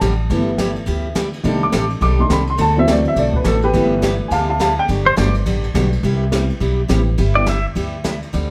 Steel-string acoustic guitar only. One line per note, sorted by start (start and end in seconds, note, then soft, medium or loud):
0.01 0.12 D3 medium
0.01 0.12 G3 medium
0.01 0.13 C4 medium
0.01 0.13 D4 medium
0.01 0.13 G4 medium
0.30 0.50 G3 medium
0.30 0.50 B3 medium
0.30 0.50 E4 medium
0.30 0.50 G4 medium
0.59 0.70 G3 medium
0.59 0.70 B3 medium
0.59 0.70 E4 medium
0.59 0.70 G4 medium
0.86 1.06 G3 soft
0.86 1.06 B3 medium
0.86 1.06 E4 medium
0.86 1.07 G4 medium
1.15 1.27 G3 medium
1.15 1.27 B3 medium
1.15 1.27 E4 medium
1.15 1.27 G4 medium
1.44 1.64 C3 medium
1.44 1.64 D#3 medium
1.44 1.64 G3 medium
1.44 1.64 C4 medium
1.44 1.64 G4 medium
1.44 1.65 A4 medium
1.72 1.84 C3 medium
1.72 1.84 D#3 medium
1.72 1.84 G3 medium
1.72 1.84 C4 medium
1.72 1.84 G4 medium
1.72 1.84 A4 medium
2.01 2.21 C3 medium
2.01 2.21 D#3 medium
2.01 2.21 G3 medium
2.01 2.22 C4 medium
2.01 2.22 G4 medium
2.01 2.22 A4 medium
2.31 2.42 C3 medium
2.31 2.42 D#3 medium
2.31 2.42 G3 medium
2.31 2.42 C4 medium
2.31 2.42 G4 medium
2.31 2.42 A4 medium
2.58 2.78 D3 medium
2.58 2.78 A3 medium
2.58 2.79 C4 medium
2.58 2.79 F#4 medium
2.58 2.79 A4 medium
2.87 2.99 D3 medium
2.87 2.99 A3 medium
2.87 2.99 C4 medium
2.87 2.99 F#4 medium
2.87 2.99 A4 medium
3.17 3.36 D3 soft
3.17 3.36 A3 medium
3.17 3.37 C4 medium
3.17 3.37 F#4 medium
3.17 3.36 A4 medium
3.45 3.56 D3 medium
3.45 3.56 A3 medium
3.45 3.56 C4 medium
3.45 3.57 F#4 medium
3.45 3.57 A4 medium
3.74 3.93 G3 medium
3.74 3.94 B3 medium
3.74 3.94 E4 medium
3.74 3.94 G4 medium
4.02 4.13 G3 medium
4.02 4.13 B3 medium
4.02 4.13 E4 medium
4.02 4.14 G4 medium
4.31 4.51 G3 soft
4.31 4.51 B3 medium
4.31 4.51 E4 medium
4.31 4.51 G4 medium
4.59 4.71 G3 medium
4.59 4.71 B3 medium
4.59 4.71 E4 medium
4.59 4.71 G4 medium
4.88 5.08 D3 medium
4.88 5.08 F#3 medium
4.88 5.08 B3 medium
4.88 5.09 D4 medium
4.88 5.09 G4 medium
5.16 5.28 D3 medium
5.16 5.28 F#3 medium
5.16 5.28 B3 medium
5.16 5.28 D4 medium
5.16 5.28 G4 medium
5.46 5.66 D3 medium
5.46 5.65 F#3 soft
5.46 5.66 B3 medium
5.46 5.66 D4 medium
5.46 5.66 G4 medium
5.75 5.86 D3 medium
5.75 5.86 F#3 medium
5.75 5.86 B3 medium
5.75 5.86 D4 medium
5.75 5.86 G4 medium
6.03 6.23 C3 medium
6.03 6.23 G3 medium
6.03 6.23 B3 medium
6.03 6.24 E4 medium
6.03 6.24 G4 medium
6.32 6.43 C3 medium
6.32 6.43 G3 medium
6.32 6.43 B3 medium
6.32 6.43 E4 medium
6.32 6.43 G4 medium
6.60 6.80 C3 medium
6.60 6.80 G3 medium
6.60 6.80 B3 medium
6.60 6.81 E4 medium
6.60 6.81 G4 medium
6.88 7.00 C3 medium
6.88 7.00 G3 medium
6.88 7.00 B3 medium
6.88 7.00 E4 medium
6.88 7.01 G4 medium
7.18 7.37 G3 medium
7.18 7.38 B3 medium
7.18 7.38 E4 medium
7.18 7.38 G4 medium
7.46 7.58 G3 medium
7.46 7.58 B3 medium
7.46 7.58 E4 medium
7.46 7.58 G4 medium
7.75 7.95 G3 medium
7.75 7.95 B3 medium
7.75 7.95 E4 medium
7.75 7.95 G4 medium
8.04 8.15 G3 medium
8.04 8.15 B3 medium
8.04 8.15 E4 medium
8.04 8.15 G4 medium
8.33 8.50 D3 medium
8.33 8.50 G3 medium
8.33 8.50 C4 medium
8.33 8.50 D4 medium
8.33 8.50 G4 medium